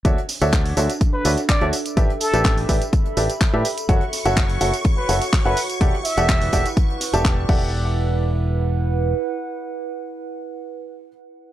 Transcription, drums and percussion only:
0.05 kick loud
0.05 closed hi-hat medium
0.05 tambourine soft
0.18 closed hi-hat soft
0.28 snare soft
0.28 open hi-hat medium
0.28 open hi-hat loud
0.28 tambourine medium
0.42 closed hi-hat medium
0.42 tambourine soft
0.53 kick loud
0.53 snare loud
0.53 clap loud
0.53 closed hi-hat medium
0.53 tambourine soft
0.66 closed hi-hat soft
0.66 open hi-hat medium
0.77 closed hi-hat medium
0.77 open hi-hat loud
0.77 tambourine medium
0.90 snare soft
0.90 closed hi-hat medium
0.90 tambourine soft
1.01 kick loud
1.01 closed hi-hat medium
1.01 tambourine soft
1.25 closed hi-hat medium
1.25 open hi-hat loud
1.25 tambourine medium
1.38 snare soft
1.38 closed hi-hat medium
1.38 tambourine soft
1.49 kick loud
1.49 snare loud
1.49 clap loud
1.49 closed hi-hat medium
1.49 tambourine soft
1.61 closed hi-hat soft
1.73 closed hi-hat medium
1.73 open hi-hat loud
1.73 tambourine medium
1.86 closed hi-hat medium
1.86 tambourine soft
1.97 kick loud
1.97 closed hi-hat medium
1.97 tambourine soft
2.10 closed hi-hat soft
2.20 closed hi-hat medium
2.20 open hi-hat loud
2.20 tambourine medium
2.34 closed hi-hat medium
2.34 tambourine soft
2.44 kick loud
2.44 snare loud
2.44 clap loud
2.44 closed hi-hat medium
2.44 tambourine soft
2.58 closed hi-hat soft
2.58 open hi-hat medium
2.69 kick medium
2.69 closed hi-hat medium
2.69 open hi-hat loud
2.69 tambourine medium
2.82 closed hi-hat medium
2.82 tambourine soft
2.93 kick loud
2.93 closed hi-hat medium
2.93 tambourine soft
3.05 closed hi-hat soft
3.17 snare medium
3.17 closed hi-hat medium
3.17 open hi-hat loud
3.17 tambourine medium
3.30 closed hi-hat medium
3.30 tambourine soft
3.41 kick loud
3.41 snare loud
3.41 clap loud
3.41 closed hi-hat medium
3.41 closed hi-hat loud
3.41 tambourine soft
3.65 closed hi-hat medium
3.65 open hi-hat loud
3.65 tambourine medium
3.78 closed hi-hat medium
3.78 tambourine soft
3.89 kick loud
3.89 closed hi-hat medium
3.89 tambourine soft
4.01 closed hi-hat soft
4.13 snare soft
4.13 open hi-hat loud
4.13 open hi-hat medium
4.13 tambourine medium
4.26 closed hi-hat medium
4.26 tambourine soft
4.36 kick loud
4.36 snare loud
4.36 clap loud
4.36 closed hi-hat medium
4.36 tambourine soft
4.49 closed hi-hat soft
4.49 open hi-hat medium
4.61 closed hi-hat medium
4.61 open hi-hat loud
4.61 tambourine medium
4.74 snare soft
4.74 closed hi-hat medium
4.74 tambourine soft
4.84 kick loud
4.84 closed hi-hat medium
4.84 tambourine soft
5.09 closed hi-hat medium
5.09 open hi-hat loud
5.09 tambourine medium
5.22 snare soft
5.22 closed hi-hat medium
5.22 tambourine soft
5.33 kick loud
5.33 snare loud
5.33 clap loud
5.33 closed hi-hat medium
5.33 tambourine soft
5.45 closed hi-hat soft
5.57 closed hi-hat medium
5.57 open hi-hat loud
5.57 tambourine medium
5.70 closed hi-hat medium
5.70 tambourine soft
5.81 kick loud
5.81 closed hi-hat medium
5.81 tambourine soft
5.94 closed hi-hat soft
6.05 closed hi-hat medium
6.05 open hi-hat loud
6.05 tambourine medium
6.18 closed hi-hat soft
6.18 tambourine soft
6.28 kick loud
6.28 snare loud
6.28 clap loud
6.28 closed hi-hat medium
6.28 tambourine soft
6.42 closed hi-hat soft
6.42 open hi-hat medium
6.52 kick medium
6.52 closed hi-hat medium
6.52 open hi-hat loud
6.52 tambourine medium
6.66 closed hi-hat medium
6.66 tambourine soft
6.77 kick loud
6.77 closed hi-hat medium
6.77 tambourine soft
6.90 closed hi-hat soft
7.00 snare medium
7.00 closed hi-hat medium
7.00 open hi-hat loud
7.00 tambourine medium
7.14 closed hi-hat soft
7.14 tambourine soft
7.24 kick loud
7.24 snare loud
7.24 clap loud
7.24 closed hi-hat medium
7.49 kick loud
7.49 crash medium

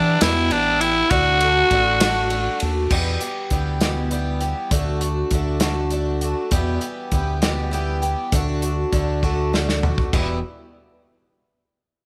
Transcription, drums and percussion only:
0.21 snare loud
0.21 ride loud
0.51 ride medium
0.81 ride medium
1.10 kick loud
1.10 ride loud
1.41 ride medium
1.71 kick medium
1.71 ride medium
2.00 snare loud
2.00 ride loud
2.30 ride medium
2.60 ride medium
2.90 kick loud
2.90 crash loud
3.21 closed hi-hat medium
3.50 kick medium
3.50 closed hi-hat medium
3.81 snare loud
3.81 closed hi-hat medium
4.11 closed hi-hat medium
4.41 closed hi-hat medium
4.71 kick loud
4.71 closed hi-hat loud
5.01 closed hi-hat medium
5.31 kick medium
5.31 closed hi-hat medium
5.60 snare loud
5.60 closed hi-hat loud
5.90 closed hi-hat medium
6.21 closed hi-hat medium
6.51 kick loud
6.51 closed hi-hat medium
6.81 closed hi-hat medium
7.12 kick medium
7.12 closed hi-hat medium
7.42 snare loud
7.42 closed hi-hat medium
7.73 closed hi-hat medium
8.03 closed hi-hat medium
8.32 kick loud
8.32 closed hi-hat medium
8.62 closed hi-hat medium
8.93 kick medium
8.93 closed hi-hat medium
9.23 kick medium
9.54 snare medium
9.69 snare medium
9.83 floor tom medium
9.98 kick medium
10.13 kick loud
10.13 crash medium

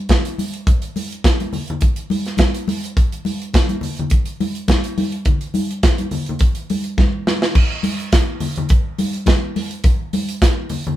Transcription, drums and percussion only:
0.09 kick loud
0.09 snare loud
0.09 closed hi-hat medium
0.09 high conga medium
0.25 closed hi-hat medium
0.38 open hi-hat medium
0.38 high conga medium
0.54 closed hi-hat soft
0.67 kick loud
0.67 closed hi-hat medium
0.67 muted conga soft
0.82 closed hi-hat soft
0.96 open hi-hat medium
0.96 high conga medium
1.12 closed hi-hat soft
1.24 kick loud
1.24 snare loud
1.24 closed hi-hat medium
1.24 muted conga soft
1.40 closed hi-hat soft
1.40 high conga medium
1.53 open hi-hat medium
1.53 muted conga soft
1.53 low conga medium
1.68 closed hi-hat soft
1.68 low conga medium
1.81 kick loud
1.81 closed hi-hat medium
1.81 muted conga soft
1.96 closed hi-hat medium
2.10 open hi-hat medium
2.10 muted conga soft
2.10 high conga medium
2.25 snare soft
2.25 closed hi-hat soft
2.37 kick loud
2.37 snare loud
2.37 closed hi-hat medium
2.37 high conga medium
2.54 closed hi-hat medium
2.68 open hi-hat medium
2.68 muted conga soft
2.68 high conga medium
2.84 closed hi-hat soft
2.97 kick loud
2.97 closed hi-hat medium
3.12 closed hi-hat soft
3.25 open hi-hat medium
3.25 muted conga soft
3.25 high conga medium
3.42 closed hi-hat soft
3.53 kick loud
3.53 snare loud
3.53 closed hi-hat medium
3.53 muted conga soft
3.69 closed hi-hat soft
3.69 high conga medium
3.81 open hi-hat medium
3.81 muted conga soft
3.81 low conga medium
3.97 closed hi-hat soft
3.97 low conga medium
4.10 kick loud
4.10 closed hi-hat medium
4.10 muted conga soft
4.26 closed hi-hat medium
4.40 open hi-hat medium
4.40 muted conga soft
4.40 high conga medium
4.55 closed hi-hat soft
4.68 kick loud
4.68 snare loud
4.68 closed hi-hat medium
4.68 high conga medium
4.84 closed hi-hat medium
4.98 open hi-hat medium
4.98 muted conga soft
4.98 high conga medium
5.12 closed hi-hat medium
5.25 kick loud
5.25 closed hi-hat medium
5.25 muted conga soft
5.25 low conga medium
5.41 closed hi-hat soft
5.54 open hi-hat medium
5.54 muted conga soft
5.54 high conga medium
5.71 closed hi-hat soft
5.83 kick loud
5.83 snare loud
5.83 closed hi-hat medium
5.98 closed hi-hat soft
5.98 high conga medium
6.11 open hi-hat medium
6.11 muted conga soft
6.11 low conga medium
6.26 closed hi-hat soft
6.26 low conga medium
6.39 kick loud
6.39 closed hi-hat medium
6.55 closed hi-hat medium
6.70 open hi-hat medium
6.70 muted conga soft
6.70 high conga medium
6.84 closed hi-hat soft
6.98 kick loud
6.98 snare medium
6.98 muted conga soft
6.98 high conga medium
7.27 snare medium
7.27 high conga medium
7.42 snare loud
7.55 kick loud
7.55 crash loud
7.55 muted conga soft
7.83 open hi-hat medium
7.83 high conga medium
8.00 closed hi-hat medium
8.12 kick loud
8.12 snare loud
8.12 closed hi-hat loud
8.40 open hi-hat medium
8.40 muted conga soft
8.40 low conga medium
8.56 closed hi-hat soft
8.56 low conga medium
8.69 kick loud
8.69 closed hi-hat medium
8.69 muted conga soft
8.98 open hi-hat medium
8.98 high conga medium
9.13 closed hi-hat soft
9.26 kick loud
9.26 snare loud
9.26 closed hi-hat medium
9.26 muted conga soft
9.26 high conga medium
9.56 open hi-hat medium
9.56 muted conga soft
9.56 high conga medium
9.71 closed hi-hat medium
9.84 kick loud
9.84 closed hi-hat medium
9.84 muted conga soft
10.13 open hi-hat medium
10.13 muted conga soft
10.13 high conga medium
10.28 closed hi-hat soft
10.42 kick loud
10.42 snare loud
10.42 closed hi-hat medium
10.69 open hi-hat medium
10.69 muted conga soft
10.69 low conga medium
10.84 closed hi-hat soft
10.84 low conga medium

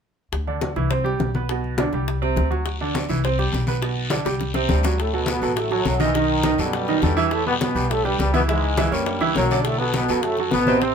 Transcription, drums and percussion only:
0.32 high bongo medium
0.32 high conga soft
0.48 high conga soft
0.61 high bongo medium
0.61 high conga medium
0.76 high bongo soft
0.76 high conga soft
0.91 high bongo medium
0.91 high conga soft
1.06 high bongo soft
1.06 high conga soft
1.20 high bongo soft
1.20 low bongo medium
1.20 high conga medium
1.35 high bongo soft
1.35 high conga medium
1.49 high bongo medium
1.64 high conga soft
1.78 high bongo medium
1.78 high conga loud
1.93 high bongo soft
1.93 high conga soft
2.08 high bongo medium
2.08 high conga soft
2.22 high bongo soft
2.22 high conga soft
2.36 high bongo soft
2.36 low bongo medium
2.36 high conga medium
2.52 high bongo soft
2.52 high conga soft
2.66 high bongo medium
2.66 high conga soft
2.66 long guiro medium
2.81 high conga soft
2.95 high bongo soft
2.95 high conga loud
2.95 short guiro medium
3.09 high bongo soft
3.09 high conga soft
3.09 short guiro medium
3.24 high bongo medium
3.24 high conga soft
3.24 long guiro medium
3.39 high bongo soft
3.39 high conga soft
3.52 high bongo soft
3.52 low bongo medium
3.52 high conga medium
3.52 short guiro medium
3.67 high bongo soft
3.67 high conga medium
3.67 short guiro medium
3.81 high bongo medium
3.81 high conga soft
3.81 long guiro medium
3.96 high conga soft
4.10 high bongo medium
4.10 high conga loud
4.10 short guiro medium
4.25 high bongo medium
4.25 high conga soft
4.25 short guiro medium
4.39 low bongo medium
4.39 high conga soft
4.39 long guiro medium
4.54 low bongo medium
4.54 high conga soft
4.69 low bongo medium
4.69 high conga medium
4.69 short guiro medium
4.83 low bongo medium
4.83 high conga soft
4.83 short guiro medium
4.98 high bongo medium
4.98 high conga soft
4.98 long guiro medium
5.13 high conga soft
5.26 high bongo medium
5.26 high conga medium
5.26 short guiro medium
5.42 high bongo soft
5.42 high conga soft
5.42 short guiro medium
5.56 high bongo medium
5.56 high conga soft
5.56 long guiro medium
5.70 high bongo soft
5.70 high conga soft
5.85 high bongo soft
5.85 low bongo medium
5.85 high conga medium
5.85 short guiro medium
6.00 high bongo soft
6.00 high conga medium
6.00 short guiro medium
6.15 high bongo medium
6.15 high conga soft
6.15 long guiro medium
6.29 high conga soft
6.43 high bongo medium
6.43 high conga medium
6.43 short guiro medium
6.58 high bongo soft
6.58 high conga soft
6.58 short guiro medium
6.73 high bongo medium
6.73 high conga soft
6.73 long guiro medium
6.88 high bongo soft
6.88 high conga soft
7.02 high bongo soft
7.02 low bongo medium
7.02 high conga medium
7.02 short guiro medium
7.17 high bongo soft
7.17 high conga soft
7.17 short guiro medium
7.31 high bongo medium
7.31 high conga soft
7.31 long guiro medium
7.47 high conga soft
7.61 high bongo medium
7.61 high conga loud
7.61 short guiro medium
7.76 high bongo soft
7.76 high conga soft
7.76 short guiro medium
7.90 high bongo medium
7.90 high conga soft
7.90 long guiro medium
8.05 high bongo soft
8.05 high conga soft
8.19 high bongo soft
8.19 low bongo medium
8.19 high conga medium
8.19 short guiro medium
8.34 high bongo soft
8.34 high conga medium
8.34 short guiro medium
8.49 high bongo medium
8.49 high conga soft
8.49 long guiro medium
8.63 high conga soft
8.77 high bongo medium
8.77 high conga loud
8.77 short guiro medium
8.92 high bongo soft
8.92 high conga soft
8.92 short guiro medium
9.06 high bongo medium
9.06 high conga soft
9.06 long guiro medium
9.21 high bongo soft
9.21 high conga soft
9.35 high bongo soft
9.35 low bongo medium
9.35 high conga medium
9.35 short guiro medium
9.51 high bongo soft
9.51 high conga soft
9.51 short guiro medium
9.65 high bongo medium
9.65 high conga soft
9.65 long guiro medium
9.79 high conga soft
9.94 high bongo medium
9.94 high conga medium
9.94 short guiro medium
10.09 high bongo soft
10.09 high conga soft
10.09 short guiro medium
10.23 high bongo medium
10.23 high conga soft
10.23 long guiro medium
10.37 high bongo soft
10.37 high conga soft
10.51 high bongo soft
10.51 low bongo medium
10.51 high conga medium
10.51 short guiro medium
10.66 high bongo soft
10.66 high conga medium
10.66 short guiro medium
10.82 high bongo medium
10.82 high conga soft
10.82 long guiro medium

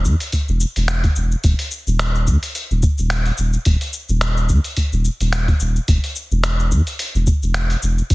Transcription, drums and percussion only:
0.05 kick medium
0.05 shaker medium
0.20 open hi-hat soft
0.20 shaker soft
0.32 kick medium
0.32 open hi-hat medium
0.32 shaker soft
0.48 shaker soft
0.61 shaker medium
0.76 open hi-hat soft
0.76 shaker soft
0.88 finger snap loud
0.88 open hi-hat medium
0.88 shaker soft
1.04 kick loud
1.04 open hi-hat soft
1.04 shaker soft
1.16 shaker medium
1.32 shaker soft
1.44 kick loud
1.44 open hi-hat medium
1.44 shaker soft
1.59 open hi-hat soft
1.59 shaker soft
1.71 shaker medium
1.87 shaker soft
1.99 finger snap loud
1.99 open hi-hat medium
1.99 shaker soft
2.15 shaker soft
2.27 kick medium
2.27 shaker medium
2.43 open hi-hat soft
2.43 shaker soft
2.55 open hi-hat medium
2.55 shaker soft
2.71 shaker soft
2.83 kick loud
2.83 shaker medium
2.98 shaker soft
3.10 finger snap loud
3.10 open hi-hat medium
3.10 shaker soft
3.25 open hi-hat soft
3.25 shaker soft
3.38 shaker medium
3.53 shaker soft
3.65 kick loud
3.65 open hi-hat medium
3.65 shaker soft
3.81 open hi-hat soft
3.81 shaker soft
3.93 shaker medium
4.09 shaker soft
4.21 finger snap loud
4.21 open hi-hat medium
4.21 shaker soft
4.37 shaker soft
4.49 kick medium
4.49 shaker medium
4.64 open hi-hat soft
4.64 shaker soft
4.77 kick medium
4.77 open hi-hat medium
4.77 shaker soft
4.93 shaker soft
5.05 shaker medium
5.21 open hi-hat soft
5.21 shaker soft
5.33 finger snap medium
5.33 open hi-hat medium
5.33 shaker soft
5.48 kick loud
5.48 open hi-hat soft
5.48 shaker soft
5.60 shaker medium
5.76 shaker soft
5.88 kick loud
5.88 open hi-hat medium
5.88 shaker soft
6.04 open hi-hat soft
6.04 shaker soft
6.16 shaker medium
6.31 shaker soft
6.44 finger snap loud
6.44 open hi-hat medium
6.44 shaker soft
6.60 shaker soft
6.72 kick medium
6.72 shaker medium
6.87 open hi-hat soft
6.87 shaker soft
6.99 open hi-hat medium
6.99 shaker soft
7.15 shaker soft
7.27 kick loud
7.27 shaker medium
7.43 shaker soft
7.54 finger snap medium
7.54 open hi-hat medium
7.54 shaker soft
7.70 open hi-hat soft
7.70 shaker soft
7.83 shaker medium
7.98 shaker soft
8.10 kick loud
8.10 open hi-hat medium
8.10 shaker soft

